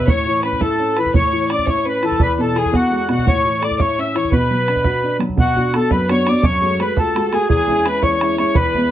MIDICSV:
0, 0, Header, 1, 5, 480
1, 0, Start_track
1, 0, Tempo, 353357
1, 106, Time_signature, 6, 3, 24, 8
1, 12105, End_track
2, 0, Start_track
2, 0, Title_t, "Accordion"
2, 0, Program_c, 0, 21
2, 121, Note_on_c, 0, 73, 111
2, 566, Note_off_c, 0, 73, 0
2, 615, Note_on_c, 0, 71, 92
2, 821, Note_off_c, 0, 71, 0
2, 843, Note_on_c, 0, 69, 81
2, 1335, Note_off_c, 0, 69, 0
2, 1351, Note_on_c, 0, 71, 86
2, 1550, Note_off_c, 0, 71, 0
2, 1569, Note_on_c, 0, 73, 100
2, 2058, Note_off_c, 0, 73, 0
2, 2080, Note_on_c, 0, 74, 88
2, 2291, Note_on_c, 0, 73, 83
2, 2295, Note_off_c, 0, 74, 0
2, 2539, Note_off_c, 0, 73, 0
2, 2558, Note_on_c, 0, 71, 91
2, 2778, Note_off_c, 0, 71, 0
2, 2784, Note_on_c, 0, 69, 78
2, 3007, Note_off_c, 0, 69, 0
2, 3024, Note_on_c, 0, 71, 104
2, 3265, Note_off_c, 0, 71, 0
2, 3271, Note_on_c, 0, 69, 80
2, 3494, Note_off_c, 0, 69, 0
2, 3513, Note_on_c, 0, 68, 78
2, 3732, Note_off_c, 0, 68, 0
2, 3732, Note_on_c, 0, 66, 87
2, 4189, Note_off_c, 0, 66, 0
2, 4209, Note_on_c, 0, 66, 75
2, 4418, Note_off_c, 0, 66, 0
2, 4452, Note_on_c, 0, 73, 113
2, 4940, Note_off_c, 0, 73, 0
2, 4941, Note_on_c, 0, 74, 79
2, 5167, Note_off_c, 0, 74, 0
2, 5169, Note_on_c, 0, 73, 93
2, 5414, Note_on_c, 0, 76, 87
2, 5419, Note_off_c, 0, 73, 0
2, 5647, Note_off_c, 0, 76, 0
2, 5655, Note_on_c, 0, 73, 78
2, 5877, Note_on_c, 0, 71, 90
2, 5884, Note_off_c, 0, 73, 0
2, 7025, Note_off_c, 0, 71, 0
2, 7331, Note_on_c, 0, 66, 93
2, 7821, Note_off_c, 0, 66, 0
2, 7826, Note_on_c, 0, 69, 92
2, 8028, Note_off_c, 0, 69, 0
2, 8054, Note_on_c, 0, 71, 75
2, 8278, Note_off_c, 0, 71, 0
2, 8297, Note_on_c, 0, 73, 93
2, 8529, Note_off_c, 0, 73, 0
2, 8539, Note_on_c, 0, 74, 83
2, 8746, Note_on_c, 0, 73, 113
2, 8767, Note_off_c, 0, 74, 0
2, 9248, Note_off_c, 0, 73, 0
2, 9257, Note_on_c, 0, 71, 88
2, 9480, Note_on_c, 0, 69, 88
2, 9485, Note_off_c, 0, 71, 0
2, 9964, Note_on_c, 0, 68, 84
2, 9975, Note_off_c, 0, 69, 0
2, 10160, Note_off_c, 0, 68, 0
2, 10181, Note_on_c, 0, 68, 116
2, 10680, Note_on_c, 0, 71, 91
2, 10685, Note_off_c, 0, 68, 0
2, 10894, Note_off_c, 0, 71, 0
2, 10904, Note_on_c, 0, 73, 101
2, 11358, Note_off_c, 0, 73, 0
2, 11393, Note_on_c, 0, 73, 90
2, 11622, Note_on_c, 0, 71, 119
2, 11633, Note_off_c, 0, 73, 0
2, 12105, Note_off_c, 0, 71, 0
2, 12105, End_track
3, 0, Start_track
3, 0, Title_t, "Fiddle"
3, 0, Program_c, 1, 110
3, 102, Note_on_c, 1, 73, 86
3, 556, Note_off_c, 1, 73, 0
3, 574, Note_on_c, 1, 71, 77
3, 828, Note_on_c, 1, 69, 73
3, 848, Note_off_c, 1, 71, 0
3, 1315, Note_on_c, 1, 71, 70
3, 1335, Note_off_c, 1, 69, 0
3, 1543, Note_off_c, 1, 71, 0
3, 1551, Note_on_c, 1, 73, 76
3, 2001, Note_off_c, 1, 73, 0
3, 2014, Note_on_c, 1, 74, 75
3, 2250, Note_on_c, 1, 73, 69
3, 2270, Note_off_c, 1, 74, 0
3, 2518, Note_on_c, 1, 71, 72
3, 2539, Note_off_c, 1, 73, 0
3, 2973, Note_off_c, 1, 71, 0
3, 2981, Note_on_c, 1, 71, 79
3, 3219, Note_off_c, 1, 71, 0
3, 3255, Note_on_c, 1, 69, 61
3, 3489, Note_on_c, 1, 68, 70
3, 3509, Note_off_c, 1, 69, 0
3, 3738, Note_on_c, 1, 66, 61
3, 3759, Note_off_c, 1, 68, 0
3, 4198, Note_off_c, 1, 66, 0
3, 4206, Note_on_c, 1, 66, 65
3, 4444, Note_on_c, 1, 73, 75
3, 4465, Note_off_c, 1, 66, 0
3, 4899, Note_off_c, 1, 73, 0
3, 4907, Note_on_c, 1, 74, 78
3, 5127, Note_off_c, 1, 74, 0
3, 5148, Note_on_c, 1, 73, 67
3, 5423, Note_on_c, 1, 76, 71
3, 5444, Note_off_c, 1, 73, 0
3, 5645, Note_on_c, 1, 73, 79
3, 5665, Note_off_c, 1, 76, 0
3, 5865, Note_off_c, 1, 73, 0
3, 5873, Note_on_c, 1, 71, 66
3, 7023, Note_off_c, 1, 71, 0
3, 7320, Note_on_c, 1, 66, 73
3, 7767, Note_off_c, 1, 66, 0
3, 7789, Note_on_c, 1, 69, 71
3, 8032, Note_on_c, 1, 71, 69
3, 8053, Note_off_c, 1, 69, 0
3, 8274, Note_off_c, 1, 71, 0
3, 8282, Note_on_c, 1, 73, 81
3, 8715, Note_off_c, 1, 73, 0
3, 8724, Note_on_c, 1, 73, 83
3, 8971, Note_off_c, 1, 73, 0
3, 9006, Note_on_c, 1, 73, 68
3, 9242, Note_on_c, 1, 71, 76
3, 9263, Note_off_c, 1, 73, 0
3, 9456, Note_off_c, 1, 71, 0
3, 9464, Note_on_c, 1, 69, 68
3, 9962, Note_on_c, 1, 68, 82
3, 9983, Note_off_c, 1, 69, 0
3, 10169, Note_off_c, 1, 68, 0
3, 10177, Note_on_c, 1, 68, 89
3, 10675, Note_on_c, 1, 71, 84
3, 10695, Note_off_c, 1, 68, 0
3, 10918, Note_on_c, 1, 73, 78
3, 10938, Note_off_c, 1, 71, 0
3, 11624, Note_on_c, 1, 71, 90
3, 11644, Note_off_c, 1, 73, 0
3, 12105, Note_off_c, 1, 71, 0
3, 12105, End_track
4, 0, Start_track
4, 0, Title_t, "Upright piano"
4, 0, Program_c, 2, 0
4, 104, Note_on_c, 2, 45, 64
4, 359, Note_on_c, 2, 52, 45
4, 585, Note_off_c, 2, 52, 0
4, 589, Note_on_c, 2, 61, 50
4, 816, Note_off_c, 2, 61, 0
4, 832, Note_on_c, 2, 64, 48
4, 1074, Note_on_c, 2, 61, 51
4, 1075, Note_off_c, 2, 64, 0
4, 1302, Note_off_c, 2, 61, 0
4, 1323, Note_on_c, 2, 52, 55
4, 1500, Note_off_c, 2, 45, 0
4, 1544, Note_off_c, 2, 52, 0
4, 1547, Note_on_c, 2, 45, 57
4, 1801, Note_on_c, 2, 52, 44
4, 2026, Note_off_c, 2, 52, 0
4, 2038, Note_on_c, 2, 61, 49
4, 2261, Note_off_c, 2, 61, 0
4, 2278, Note_on_c, 2, 64, 49
4, 2512, Note_on_c, 2, 61, 55
4, 2518, Note_off_c, 2, 64, 0
4, 2742, Note_off_c, 2, 61, 0
4, 2753, Note_on_c, 2, 52, 55
4, 2943, Note_off_c, 2, 45, 0
4, 2978, Note_off_c, 2, 52, 0
4, 2983, Note_on_c, 2, 40, 66
4, 3239, Note_on_c, 2, 47, 48
4, 3465, Note_off_c, 2, 47, 0
4, 3467, Note_on_c, 2, 52, 50
4, 3689, Note_on_c, 2, 59, 55
4, 3695, Note_off_c, 2, 52, 0
4, 3944, Note_off_c, 2, 59, 0
4, 3955, Note_on_c, 2, 56, 51
4, 4183, Note_off_c, 2, 56, 0
4, 4192, Note_on_c, 2, 47, 62
4, 4381, Note_off_c, 2, 40, 0
4, 4418, Note_off_c, 2, 47, 0
4, 4431, Note_on_c, 2, 45, 64
4, 4686, Note_on_c, 2, 52, 49
4, 4909, Note_off_c, 2, 52, 0
4, 4913, Note_on_c, 2, 57, 52
4, 5139, Note_off_c, 2, 57, 0
4, 5153, Note_on_c, 2, 64, 51
4, 5396, Note_off_c, 2, 64, 0
4, 5400, Note_on_c, 2, 61, 57
4, 5626, Note_off_c, 2, 61, 0
4, 5632, Note_on_c, 2, 52, 53
4, 5826, Note_off_c, 2, 45, 0
4, 5859, Note_off_c, 2, 52, 0
4, 5874, Note_on_c, 2, 47, 65
4, 6120, Note_on_c, 2, 54, 40
4, 6347, Note_off_c, 2, 54, 0
4, 6358, Note_on_c, 2, 62, 45
4, 6582, Note_off_c, 2, 62, 0
4, 6591, Note_on_c, 2, 66, 49
4, 6834, Note_on_c, 2, 62, 56
4, 6836, Note_off_c, 2, 66, 0
4, 7053, Note_on_c, 2, 54, 57
4, 7064, Note_off_c, 2, 62, 0
4, 7268, Note_off_c, 2, 47, 0
4, 7290, Note_off_c, 2, 54, 0
4, 7292, Note_on_c, 2, 47, 55
4, 7548, Note_on_c, 2, 59, 40
4, 7554, Note_on_c, 2, 62, 45
4, 7556, Note_on_c, 2, 66, 48
4, 7766, Note_off_c, 2, 59, 0
4, 7771, Note_off_c, 2, 62, 0
4, 7772, Note_off_c, 2, 47, 0
4, 7783, Note_off_c, 2, 66, 0
4, 7786, Note_on_c, 2, 59, 42
4, 7791, Note_on_c, 2, 62, 42
4, 7803, Note_on_c, 2, 66, 43
4, 8041, Note_on_c, 2, 42, 55
4, 8179, Note_off_c, 2, 59, 0
4, 8182, Note_off_c, 2, 62, 0
4, 8190, Note_off_c, 2, 66, 0
4, 8268, Note_on_c, 2, 59, 53
4, 8278, Note_on_c, 2, 62, 43
4, 8279, Note_on_c, 2, 66, 57
4, 8493, Note_off_c, 2, 59, 0
4, 8499, Note_off_c, 2, 62, 0
4, 8505, Note_off_c, 2, 66, 0
4, 8507, Note_off_c, 2, 42, 0
4, 8513, Note_on_c, 2, 59, 56
4, 8519, Note_on_c, 2, 62, 45
4, 8525, Note_on_c, 2, 66, 57
4, 8700, Note_off_c, 2, 59, 0
4, 8704, Note_off_c, 2, 62, 0
4, 8707, Note_off_c, 2, 66, 0
4, 8753, Note_on_c, 2, 42, 74
4, 8988, Note_on_c, 2, 56, 44
4, 8989, Note_on_c, 2, 57, 41
4, 8993, Note_on_c, 2, 66, 43
4, 9210, Note_off_c, 2, 56, 0
4, 9215, Note_off_c, 2, 57, 0
4, 9220, Note_off_c, 2, 66, 0
4, 9223, Note_off_c, 2, 42, 0
4, 9230, Note_on_c, 2, 56, 45
4, 9236, Note_on_c, 2, 57, 36
4, 9240, Note_on_c, 2, 66, 43
4, 9469, Note_on_c, 2, 37, 63
4, 9621, Note_off_c, 2, 56, 0
4, 9625, Note_off_c, 2, 57, 0
4, 9628, Note_off_c, 2, 66, 0
4, 9710, Note_on_c, 2, 56, 44
4, 9720, Note_on_c, 2, 57, 44
4, 9727, Note_on_c, 2, 66, 57
4, 9928, Note_off_c, 2, 56, 0
4, 9936, Note_off_c, 2, 57, 0
4, 9939, Note_off_c, 2, 66, 0
4, 9940, Note_off_c, 2, 37, 0
4, 9949, Note_on_c, 2, 56, 54
4, 9956, Note_on_c, 2, 57, 45
4, 9959, Note_on_c, 2, 66, 62
4, 10137, Note_off_c, 2, 56, 0
4, 10142, Note_off_c, 2, 57, 0
4, 10143, Note_off_c, 2, 66, 0
4, 10178, Note_on_c, 2, 40, 75
4, 10416, Note_on_c, 2, 56, 47
4, 10435, Note_on_c, 2, 61, 39
4, 10440, Note_on_c, 2, 64, 49
4, 10652, Note_off_c, 2, 56, 0
4, 10654, Note_off_c, 2, 40, 0
4, 10654, Note_off_c, 2, 61, 0
4, 10661, Note_off_c, 2, 64, 0
4, 10673, Note_on_c, 2, 56, 43
4, 10674, Note_on_c, 2, 61, 44
4, 10681, Note_on_c, 2, 64, 53
4, 10900, Note_on_c, 2, 40, 58
4, 11062, Note_off_c, 2, 56, 0
4, 11063, Note_off_c, 2, 61, 0
4, 11067, Note_off_c, 2, 64, 0
4, 11164, Note_on_c, 2, 61, 42
4, 11165, Note_on_c, 2, 56, 45
4, 11172, Note_on_c, 2, 64, 55
4, 11371, Note_off_c, 2, 61, 0
4, 11373, Note_off_c, 2, 56, 0
4, 11375, Note_off_c, 2, 40, 0
4, 11387, Note_off_c, 2, 64, 0
4, 11392, Note_on_c, 2, 61, 47
4, 11393, Note_on_c, 2, 56, 52
4, 11407, Note_on_c, 2, 64, 57
4, 11578, Note_off_c, 2, 61, 0
4, 11579, Note_off_c, 2, 56, 0
4, 11588, Note_off_c, 2, 64, 0
4, 11628, Note_on_c, 2, 40, 69
4, 11880, Note_on_c, 2, 56, 42
4, 11889, Note_on_c, 2, 59, 45
4, 11889, Note_on_c, 2, 64, 47
4, 12094, Note_off_c, 2, 56, 0
4, 12098, Note_off_c, 2, 59, 0
4, 12099, Note_off_c, 2, 40, 0
4, 12103, Note_off_c, 2, 64, 0
4, 12105, End_track
5, 0, Start_track
5, 0, Title_t, "Bodhran"
5, 103, Note_on_c, 9, 64, 75
5, 239, Note_off_c, 9, 64, 0
5, 585, Note_on_c, 9, 64, 49
5, 709, Note_off_c, 9, 64, 0
5, 709, Note_on_c, 9, 64, 25
5, 826, Note_off_c, 9, 64, 0
5, 826, Note_on_c, 9, 64, 72
5, 962, Note_off_c, 9, 64, 0
5, 1311, Note_on_c, 9, 64, 47
5, 1432, Note_off_c, 9, 64, 0
5, 1432, Note_on_c, 9, 64, 24
5, 1549, Note_off_c, 9, 64, 0
5, 1549, Note_on_c, 9, 64, 72
5, 1685, Note_off_c, 9, 64, 0
5, 2037, Note_on_c, 9, 64, 52
5, 2150, Note_off_c, 9, 64, 0
5, 2150, Note_on_c, 9, 64, 23
5, 2269, Note_off_c, 9, 64, 0
5, 2269, Note_on_c, 9, 64, 67
5, 2405, Note_off_c, 9, 64, 0
5, 2755, Note_on_c, 9, 64, 38
5, 2870, Note_off_c, 9, 64, 0
5, 2870, Note_on_c, 9, 64, 24
5, 2980, Note_off_c, 9, 64, 0
5, 2980, Note_on_c, 9, 64, 72
5, 3116, Note_off_c, 9, 64, 0
5, 3480, Note_on_c, 9, 64, 50
5, 3599, Note_off_c, 9, 64, 0
5, 3599, Note_on_c, 9, 64, 28
5, 3715, Note_off_c, 9, 64, 0
5, 3715, Note_on_c, 9, 64, 69
5, 3851, Note_off_c, 9, 64, 0
5, 4196, Note_on_c, 9, 64, 47
5, 4322, Note_off_c, 9, 64, 0
5, 4322, Note_on_c, 9, 64, 24
5, 4442, Note_off_c, 9, 64, 0
5, 4442, Note_on_c, 9, 64, 64
5, 4578, Note_off_c, 9, 64, 0
5, 4925, Note_on_c, 9, 64, 52
5, 5035, Note_off_c, 9, 64, 0
5, 5035, Note_on_c, 9, 64, 23
5, 5156, Note_off_c, 9, 64, 0
5, 5156, Note_on_c, 9, 64, 74
5, 5292, Note_off_c, 9, 64, 0
5, 5647, Note_on_c, 9, 64, 43
5, 5761, Note_off_c, 9, 64, 0
5, 5761, Note_on_c, 9, 64, 20
5, 5865, Note_off_c, 9, 64, 0
5, 5865, Note_on_c, 9, 64, 59
5, 6000, Note_off_c, 9, 64, 0
5, 6358, Note_on_c, 9, 64, 43
5, 6463, Note_off_c, 9, 64, 0
5, 6463, Note_on_c, 9, 64, 26
5, 6579, Note_off_c, 9, 64, 0
5, 6579, Note_on_c, 9, 64, 70
5, 6715, Note_off_c, 9, 64, 0
5, 7069, Note_on_c, 9, 64, 47
5, 7186, Note_off_c, 9, 64, 0
5, 7186, Note_on_c, 9, 64, 23
5, 7303, Note_off_c, 9, 64, 0
5, 7303, Note_on_c, 9, 64, 66
5, 7439, Note_off_c, 9, 64, 0
5, 7557, Note_on_c, 9, 64, 28
5, 7693, Note_off_c, 9, 64, 0
5, 7795, Note_on_c, 9, 64, 57
5, 7931, Note_off_c, 9, 64, 0
5, 8024, Note_on_c, 9, 64, 75
5, 8160, Note_off_c, 9, 64, 0
5, 8278, Note_on_c, 9, 64, 63
5, 8414, Note_off_c, 9, 64, 0
5, 8512, Note_on_c, 9, 64, 54
5, 8648, Note_off_c, 9, 64, 0
5, 8735, Note_on_c, 9, 64, 78
5, 8871, Note_off_c, 9, 64, 0
5, 9236, Note_on_c, 9, 64, 52
5, 9372, Note_off_c, 9, 64, 0
5, 9466, Note_on_c, 9, 64, 82
5, 9602, Note_off_c, 9, 64, 0
5, 9727, Note_on_c, 9, 64, 63
5, 9863, Note_off_c, 9, 64, 0
5, 9951, Note_on_c, 9, 64, 51
5, 10087, Note_off_c, 9, 64, 0
5, 10184, Note_on_c, 9, 64, 67
5, 10319, Note_off_c, 9, 64, 0
5, 10440, Note_on_c, 9, 64, 27
5, 10576, Note_off_c, 9, 64, 0
5, 10671, Note_on_c, 9, 64, 65
5, 10807, Note_off_c, 9, 64, 0
5, 10902, Note_on_c, 9, 64, 81
5, 11038, Note_off_c, 9, 64, 0
5, 11155, Note_on_c, 9, 64, 67
5, 11291, Note_off_c, 9, 64, 0
5, 11388, Note_on_c, 9, 64, 43
5, 11524, Note_off_c, 9, 64, 0
5, 11615, Note_on_c, 9, 64, 83
5, 11750, Note_off_c, 9, 64, 0
5, 11872, Note_on_c, 9, 64, 28
5, 12007, Note_off_c, 9, 64, 0
5, 12105, End_track
0, 0, End_of_file